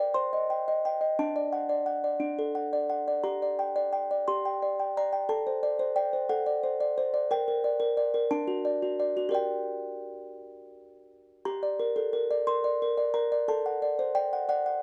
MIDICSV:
0, 0, Header, 1, 2, 480
1, 0, Start_track
1, 0, Key_signature, -2, "minor"
1, 0, Tempo, 686499
1, 822, Time_signature, 6, 3, 24, 8
1, 3224, Tempo, 671892
1, 6104, Tempo, 700117
1, 8504, Tempo, 670391
1, 10424, End_track
2, 0, Start_track
2, 0, Title_t, "Music box"
2, 0, Program_c, 0, 10
2, 0, Note_on_c, 0, 70, 61
2, 0, Note_on_c, 0, 74, 48
2, 0, Note_on_c, 0, 82, 86
2, 78, Note_off_c, 0, 82, 0
2, 85, Note_off_c, 0, 70, 0
2, 100, Note_on_c, 0, 84, 98
2, 102, Note_on_c, 0, 72, 63
2, 106, Note_off_c, 0, 74, 0
2, 231, Note_on_c, 0, 75, 46
2, 351, Note_on_c, 0, 79, 45
2, 417, Note_off_c, 0, 75, 0
2, 475, Note_on_c, 0, 75, 38
2, 537, Note_off_c, 0, 79, 0
2, 596, Note_on_c, 0, 79, 51
2, 660, Note_off_c, 0, 75, 0
2, 706, Note_on_c, 0, 75, 42
2, 781, Note_off_c, 0, 79, 0
2, 792, Note_off_c, 0, 84, 0
2, 799, Note_off_c, 0, 72, 0
2, 824, Note_off_c, 0, 75, 0
2, 832, Note_on_c, 0, 62, 57
2, 833, Note_on_c, 0, 81, 78
2, 949, Note_on_c, 0, 74, 43
2, 1067, Note_on_c, 0, 78, 49
2, 1137, Note_off_c, 0, 74, 0
2, 1184, Note_on_c, 0, 74, 46
2, 1257, Note_off_c, 0, 78, 0
2, 1301, Note_on_c, 0, 78, 47
2, 1376, Note_off_c, 0, 74, 0
2, 1426, Note_on_c, 0, 74, 38
2, 1494, Note_off_c, 0, 78, 0
2, 1529, Note_off_c, 0, 62, 0
2, 1538, Note_on_c, 0, 62, 48
2, 1617, Note_off_c, 0, 74, 0
2, 1668, Note_on_c, 0, 69, 41
2, 1783, Note_on_c, 0, 78, 43
2, 1859, Note_off_c, 0, 69, 0
2, 1909, Note_on_c, 0, 74, 40
2, 1977, Note_off_c, 0, 78, 0
2, 2004, Note_off_c, 0, 81, 0
2, 2024, Note_on_c, 0, 78, 41
2, 2101, Note_off_c, 0, 74, 0
2, 2151, Note_on_c, 0, 74, 42
2, 2220, Note_off_c, 0, 78, 0
2, 2244, Note_off_c, 0, 62, 0
2, 2262, Note_on_c, 0, 82, 75
2, 2263, Note_on_c, 0, 67, 52
2, 2271, Note_off_c, 0, 74, 0
2, 2394, Note_on_c, 0, 74, 36
2, 2510, Note_on_c, 0, 79, 45
2, 2583, Note_off_c, 0, 74, 0
2, 2628, Note_on_c, 0, 74, 46
2, 2701, Note_off_c, 0, 79, 0
2, 2745, Note_on_c, 0, 79, 41
2, 2819, Note_off_c, 0, 74, 0
2, 2872, Note_on_c, 0, 74, 40
2, 2938, Note_off_c, 0, 79, 0
2, 2956, Note_off_c, 0, 82, 0
2, 2983, Note_off_c, 0, 67, 0
2, 2990, Note_on_c, 0, 84, 80
2, 2992, Note_on_c, 0, 67, 50
2, 3061, Note_off_c, 0, 74, 0
2, 3115, Note_on_c, 0, 79, 43
2, 3233, Note_on_c, 0, 74, 44
2, 3302, Note_off_c, 0, 79, 0
2, 3356, Note_on_c, 0, 79, 39
2, 3422, Note_off_c, 0, 74, 0
2, 3448, Note_off_c, 0, 84, 0
2, 3482, Note_on_c, 0, 74, 42
2, 3483, Note_on_c, 0, 82, 82
2, 3543, Note_off_c, 0, 79, 0
2, 3592, Note_on_c, 0, 79, 41
2, 3666, Note_off_c, 0, 74, 0
2, 3686, Note_off_c, 0, 67, 0
2, 3705, Note_off_c, 0, 82, 0
2, 3709, Note_off_c, 0, 79, 0
2, 3709, Note_on_c, 0, 69, 60
2, 3712, Note_on_c, 0, 81, 75
2, 3835, Note_on_c, 0, 72, 40
2, 3952, Note_on_c, 0, 74, 46
2, 4022, Note_off_c, 0, 72, 0
2, 4069, Note_on_c, 0, 72, 48
2, 4141, Note_off_c, 0, 74, 0
2, 4169, Note_off_c, 0, 81, 0
2, 4186, Note_on_c, 0, 74, 49
2, 4187, Note_on_c, 0, 79, 77
2, 4259, Note_off_c, 0, 72, 0
2, 4310, Note_on_c, 0, 72, 46
2, 4378, Note_off_c, 0, 74, 0
2, 4416, Note_off_c, 0, 79, 0
2, 4419, Note_off_c, 0, 69, 0
2, 4426, Note_on_c, 0, 78, 81
2, 4427, Note_on_c, 0, 69, 52
2, 4500, Note_off_c, 0, 72, 0
2, 4548, Note_on_c, 0, 74, 50
2, 4670, Note_on_c, 0, 72, 47
2, 4738, Note_off_c, 0, 74, 0
2, 4791, Note_on_c, 0, 74, 46
2, 4858, Note_off_c, 0, 72, 0
2, 4914, Note_on_c, 0, 72, 59
2, 4977, Note_off_c, 0, 74, 0
2, 5029, Note_on_c, 0, 74, 48
2, 5097, Note_off_c, 0, 72, 0
2, 5111, Note_off_c, 0, 78, 0
2, 5119, Note_off_c, 0, 69, 0
2, 5143, Note_off_c, 0, 74, 0
2, 5151, Note_on_c, 0, 70, 65
2, 5155, Note_on_c, 0, 79, 88
2, 5264, Note_off_c, 0, 70, 0
2, 5273, Note_on_c, 0, 70, 48
2, 5390, Note_on_c, 0, 74, 63
2, 5456, Note_off_c, 0, 70, 0
2, 5500, Note_on_c, 0, 70, 56
2, 5575, Note_off_c, 0, 74, 0
2, 5626, Note_on_c, 0, 74, 57
2, 5691, Note_off_c, 0, 70, 0
2, 5746, Note_on_c, 0, 70, 49
2, 5815, Note_off_c, 0, 74, 0
2, 5839, Note_off_c, 0, 79, 0
2, 5864, Note_off_c, 0, 70, 0
2, 5865, Note_on_c, 0, 62, 72
2, 5865, Note_on_c, 0, 81, 98
2, 5985, Note_on_c, 0, 66, 52
2, 6108, Note_on_c, 0, 74, 52
2, 6176, Note_off_c, 0, 66, 0
2, 6229, Note_on_c, 0, 66, 43
2, 6295, Note_off_c, 0, 74, 0
2, 6347, Note_on_c, 0, 74, 51
2, 6416, Note_off_c, 0, 66, 0
2, 6464, Note_on_c, 0, 66, 44
2, 6535, Note_off_c, 0, 74, 0
2, 6548, Note_on_c, 0, 67, 52
2, 6555, Note_off_c, 0, 81, 0
2, 6561, Note_on_c, 0, 70, 36
2, 6562, Note_off_c, 0, 62, 0
2, 6569, Note_on_c, 0, 74, 41
2, 6582, Note_off_c, 0, 66, 0
2, 6586, Note_on_c, 0, 79, 68
2, 7767, Note_off_c, 0, 79, 0
2, 7989, Note_off_c, 0, 67, 0
2, 7995, Note_off_c, 0, 70, 0
2, 7999, Note_off_c, 0, 74, 0
2, 8032, Note_on_c, 0, 82, 83
2, 8033, Note_on_c, 0, 67, 60
2, 8150, Note_on_c, 0, 74, 39
2, 8266, Note_on_c, 0, 70, 48
2, 8340, Note_off_c, 0, 74, 0
2, 8379, Note_on_c, 0, 69, 45
2, 8455, Note_off_c, 0, 70, 0
2, 8495, Note_on_c, 0, 70, 46
2, 8500, Note_off_c, 0, 69, 0
2, 8621, Note_on_c, 0, 74, 46
2, 8693, Note_off_c, 0, 70, 0
2, 8717, Note_off_c, 0, 82, 0
2, 8739, Note_on_c, 0, 70, 47
2, 8739, Note_on_c, 0, 84, 83
2, 8816, Note_off_c, 0, 74, 0
2, 8862, Note_on_c, 0, 74, 49
2, 8936, Note_off_c, 0, 70, 0
2, 8990, Note_on_c, 0, 70, 44
2, 9057, Note_off_c, 0, 74, 0
2, 9100, Note_on_c, 0, 74, 49
2, 9181, Note_off_c, 0, 70, 0
2, 9204, Note_off_c, 0, 84, 0
2, 9217, Note_on_c, 0, 82, 91
2, 9218, Note_on_c, 0, 70, 49
2, 9296, Note_off_c, 0, 74, 0
2, 9346, Note_on_c, 0, 74, 47
2, 9414, Note_off_c, 0, 70, 0
2, 9439, Note_off_c, 0, 67, 0
2, 9452, Note_off_c, 0, 82, 0
2, 9463, Note_on_c, 0, 69, 60
2, 9466, Note_on_c, 0, 81, 80
2, 9467, Note_off_c, 0, 74, 0
2, 9589, Note_on_c, 0, 78, 43
2, 9706, Note_on_c, 0, 74, 50
2, 9780, Note_off_c, 0, 78, 0
2, 9826, Note_on_c, 0, 72, 49
2, 9899, Note_off_c, 0, 74, 0
2, 9927, Note_off_c, 0, 81, 0
2, 9940, Note_on_c, 0, 79, 83
2, 9941, Note_on_c, 0, 74, 51
2, 9947, Note_off_c, 0, 72, 0
2, 10070, Note_on_c, 0, 78, 53
2, 10136, Note_off_c, 0, 74, 0
2, 10173, Note_off_c, 0, 79, 0
2, 10177, Note_off_c, 0, 78, 0
2, 10182, Note_on_c, 0, 74, 59
2, 10186, Note_on_c, 0, 78, 92
2, 10298, Note_off_c, 0, 78, 0
2, 10306, Note_on_c, 0, 78, 54
2, 10374, Note_off_c, 0, 74, 0
2, 10424, Note_off_c, 0, 69, 0
2, 10424, Note_off_c, 0, 78, 0
2, 10424, End_track
0, 0, End_of_file